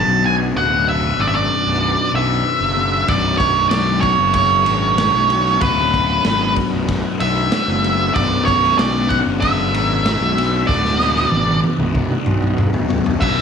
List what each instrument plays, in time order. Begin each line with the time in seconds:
Already playing: distorted electric guitar B1 F#2 B2, tonewheel organ B3 D4 F#4, lead electric guitar A5
0.08 fingered electric bass B1
0.23 distorted electric guitar B1 F#2 B2, lead electric guitar G#5
0.55 fingered electric bass D1, distorted electric guitar B1 F#2 B2, lead electric guitar F#5
0.89 lead electric guitar E5
1.18 fingered electric bass G#1, lead electric guitar D5
1.28 lead electric guitar E5
1.35 lead electric guitar D5
1.66 fingered electric bass B0
2.13 fingered electric bass B1, lead electric guitar E5
2.60 fingered electric bass F#1
2.76 distorted electric guitar B1 F#2 B2
3.07 fingered electric bass B0, distorted electric guitar B1 F#2 B2, lead electric guitar D5, kick, ride
3.38 lead electric guitar C#5, kick, ride
3.69 fingered electric bass B1, lead electric guitar D5, snare, ride
4.01 lead electric guitar C#5, kick, ride
4.19 fingered electric bass F#1
4.34 lead electric guitar C#5, kick, ride
4.66 fingered electric bass G#1, ride
4.98 snare, ride
5.14 fingered electric bass B1
5.29 distorted electric guitar B1 F#2 B2, ride
5.46 snare
5.61 fingered electric bass D1, distorted electric guitar B1 F#2, lead electric guitar B4, kick, ride
5.65 distorted electric guitar B2
5.94 kick, ride
6.25 fingered electric bass G#1, snare, ride
6.56 kick, ride
6.73 fingered electric bass B0
6.88 kick, ride
7.20 fingered electric bass B1, lead electric guitar E5, ride
7.52 snare, ride
7.68 fingered electric bass F#1, snare
7.83 distorted electric guitar F#2 B2, ride
7.87 distorted electric guitar B1
8.14 fingered electric bass B0, distorted electric guitar B1 F#2, lead electric guitar D5, kick, ride
8.19 distorted electric guitar B2
8.45 lead electric guitar C#5, kick, ride
8.63 snare
8.78 fingered electric bass B1, lead electric guitar D5, snare, ride
8.95 snare
9.09 lead electric guitar F#5, kick, ride
9.26 fingered electric bass F#1
9.40 lead electric guitar E5, kick, ride
9.73 fingered electric bass G#1, ride
10.06 snare, ride
10.21 fingered electric bass B1
10.36 distorted electric guitar B1 F#2 B2, ride
10.67 fingered electric bass D1, distorted electric guitar B1 F#2, lead electric guitar D5, kick, snare
10.72 distorted electric guitar B2
10.85 snare
11.00 snare
11.16 snare
11.32 fingered electric bass G#1, high tom
11.48 high tom
11.64 high tom
11.78 fingered electric bass B0, mid tom
11.95 kick, mid tom
12.11 mid tom
12.26 fingered electric bass B1, mid tom
12.42 mid tom
12.58 fingered electric bass E1, mid tom
12.74 fingered electric bass D1, floor tom
12.89 fingered electric bass C#1, distorted electric guitar B1 F#2 B2, floor tom
13.06 fingered electric bass B0, floor tom
13.20 fingered electric bass B0, distorted electric guitar B1, tonewheel organ B3 D4 F#4, lead electric guitar E5, kick, crash
13.24 distorted electric guitar F#2 B2